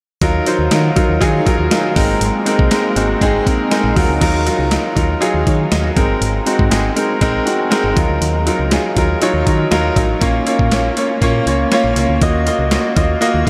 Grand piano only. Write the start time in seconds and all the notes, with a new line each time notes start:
0.22 F#3 D#4 F4 A#4
0.46 F#3 D#4 F4 C5
0.71 F#3 D#4 F4 A#4
0.96 F#3 D#4 F4 A#4
1.21 F#3 D#4 F4 G#4
1.46 F#3 D#4 F4 A#4
1.71 F#3 D#4 F4 A#4
1.96 G#3 C4 D#4 A#4
2.46 G#3 C4 D#4 A#4
2.71 G#3 C4 D#4 A#4
2.96 G#3 C4 D#4 F#4
3.21 G#3 C4 D#4 G#4
3.46 G#3 C4 D#4 A#4
3.71 G#3 C4 D#4 A#4 G#5
3.96 F#3 D#4 F4 A#4 F#5
4.21 F#3 D#4 F4 A#4
4.46 F#3 D#4 F4 A#4
4.71 F#3 D#4 F4 A#4
4.95 F#3 D#4 F4 A#4
5.20 F#3 D#4 F4 G#4
5.47 G#4 C#5
5.72 A#4 D#5
5.96 G#3 C4 D#4 A#4
6.46 G#3 C4 D#4 F#4
6.70 G#3 C4 D#4 G#4
6.95 G#3 C4 D#4 A#4
7.21 G#3 C4 D#4 A#4
7.46 G#3 C4 D#4 F#4 F#5
7.59 G#5
7.70 G#3 C4 D#4 A#4 A#5
7.96 F#3 D#4 F4 A#4
8.46 F#3 D#4 F4 A#4
8.71 F#3 D#4 F4 G#4
8.97 F#3 D#4 F4 A#4
9.22 F#3 D#4 F4 C#5
9.46 F#3 D#4 F4 A#4
9.71 F#3 D#4 F4 A#4
9.96 F#3 D#4 F4 A#4
10.21 A#3 C#4 F4 C#5
10.47 A#3 C#4 F4 C#5
10.72 A#3 C#4 F4 C#5
10.97 A#3 C#4 F4 C#5
11.22 A#3 C#4 F4 C#5
11.47 A#3 C#4 F4 C#5
11.72 A#3 C#4 F4 C#5
11.97 A#3 C#4 F4 C#5
12.21 A#3 F4 F#4 D#5
12.46 A#3 F4 F#4 D#5
12.71 A#3 F4 F#4 D#5
12.96 A#3 F4 F#4 D#5
13.21 A#3 F4 F#4 D#5
13.45 A#3 F4 F#4